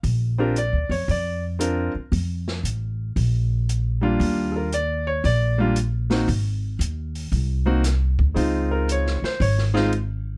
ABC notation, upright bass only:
X:1
M:4/4
L:1/8
Q:"Swing" 1/4=115
K:Bb
V:1 name="Upright bass" clef=bass
B,,,2- (3B,,, D,, F,, F,,3 z | F,,2 A,,,2 B,,,4 | E,,4 B,,,4 | _A,,,2 E,,2 C,,3 D,, |
_D,,3 z _A,,,4 |]